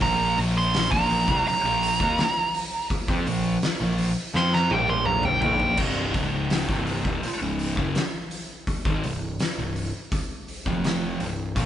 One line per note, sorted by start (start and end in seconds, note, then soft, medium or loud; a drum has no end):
0.01 0.35 A#1 medium
0.01 0.36 A#2 medium
0.01 0.37 F3 loud
0.01 0.37 A#3 loud
0.01 0.37 A#5 loud
0.01 kick loud
0.01 open hi-hat medium
0.37 0.88 A#1 medium
0.37 0.91 A#2 loud
0.37 0.91 F3 loud
0.37 0.91 A#3 loud
0.37 open hi-hat medium
0.58 0.91 C6 loud
0.74 snare loud
0.74 open hi-hat medium
0.92 1.25 A#1 medium
0.92 1.27 A#2 medium
0.92 1.27 F3 medium
0.92 1.27 A#3 loud
0.92 1.44 A#5 loud
0.92 kick loud
1.10 open hi-hat medium
1.28 1.45 C2 loud
1.28 1.45 C3 medium
1.28 1.46 G3 loud
1.28 kick loud
1.46 2.87 A#5 loud
1.46 muted picked electric bass stroke soft
1.46 muted distorted electric guitar stroke medium
1.46 open hi-hat medium
1.63 1.97 A#1 medium
1.63 1.99 A#2 loud
1.63 2.00 F3 medium
1.63 2.00 A#3 loud
1.82 open hi-hat medium
2.00 2.17 D#2 medium
2.00 2.17 D#3 medium
2.00 2.18 A#3 medium
2.00 kick loud
2.18 snare loud
2.18 open hi-hat medium
2.54 open hi-hat medium
2.90 kick loud
2.90 open hi-hat medium
3.08 3.25 F2 loud
3.08 3.25 F3 loud
3.08 3.26 C4 loud
3.08 kick loud
3.26 3.60 A#1 medium
3.26 3.56 A#2 medium
3.26 3.56 F3 medium
3.26 open hi-hat medium
3.62 snare loud
3.62 open hi-hat medium
3.80 4.14 A#1 medium
3.80 4.09 A#2 medium
3.80 4.10 F3 medium
3.98 open hi-hat medium
4.34 4.68 F2 loud
4.34 4.69 F3 loud
4.34 4.70 C4 loud
4.34 4.70 F4 loud
4.34 4.53 C6 loud
4.34 snare medium
4.53 4.71 A#5 medium
4.53 snare medium
4.70 5.38 A#1 loud
4.70 5.42 A#2 loud
4.70 5.42 F3 loud
4.70 5.42 A#3 medium
4.70 4.89 G5 loud
4.70 high tom medium
4.88 5.06 C6 loud
4.88 high tom medium
5.05 5.25 A#5 medium
5.05 mid tom medium
5.23 5.40 G5 medium
5.23 mid tom medium
5.41 5.76 A#1 loud
5.41 5.77 A#2 loud
5.41 5.78 F3 loud
5.41 5.78 A#3 loud
5.41 5.77 G5 loud
5.41 floor tom loud
5.60 floor tom loud
5.77 6.12 C1 medium
5.77 6.13 C2 loud
5.77 6.14 G2 loud
5.77 6.14 C3 loud
5.77 kick loud
5.77 crash loud
6.14 6.65 C#1 medium
6.14 6.68 C#2 loud
6.14 6.68 G#2 medium
6.14 6.68 C#3 medium
6.14 kick loud
6.14 open hi-hat medium
6.50 snare loud
6.50 open hi-hat medium
6.69 7.03 C1 medium
6.69 7.04 C2 medium
6.69 7.04 G2 medium
6.69 7.05 C3 medium
6.69 kick loud
6.87 open hi-hat medium
7.04 7.22 D#1 loud
7.04 7.22 D#2 medium
7.04 7.23 A#2 loud
7.04 kick loud
7.22 muted picked electric bass stroke soft
7.22 muted distorted electric guitar stroke medium
7.22 open hi-hat medium
7.41 7.75 C#1 medium
7.41 7.77 C#2 medium
7.41 7.77 G#2 loud
7.41 7.77 C#3 loud
7.59 open hi-hat medium
7.77 7.94 F#1 loud
7.77 7.95 F#2 medium
7.77 7.95 C#3 medium
7.77 kick loud
7.95 snare loud
7.95 open hi-hat medium
8.31 open hi-hat medium
8.67 kick loud
8.67 open hi-hat medium
8.85 9.02 G#1 medium
8.85 9.03 G#2 medium
8.85 9.03 D#3 loud
8.85 kick loud
9.03 9.37 C1 medium
9.03 9.33 C2 medium
9.03 9.33 G2 medium
9.03 open hi-hat medium
9.40 snare loud
9.40 open hi-hat medium
9.58 9.91 C1 medium
9.58 9.87 C2 medium
9.58 9.87 G2 medium
9.76 open hi-hat medium
10.12 kick loud
10.12 open hi-hat medium
10.48 open hi-hat medium
10.66 11.16 F1 medium
10.66 11.19 F2 medium
10.66 11.19 C3 medium
10.66 11.20 F3 medium
10.66 kick medium
10.84 snare loud
10.84 open hi-hat medium
11.20 11.54 C1 medium
11.20 11.49 C2 medium
11.20 11.49 G2 medium
11.20 open hi-hat medium
11.56 11.66 A#1 medium
11.56 11.66 A#2 loud
11.56 11.66 F3 loud
11.56 11.66 A#3 loud
11.56 kick loud
11.56 open hi-hat medium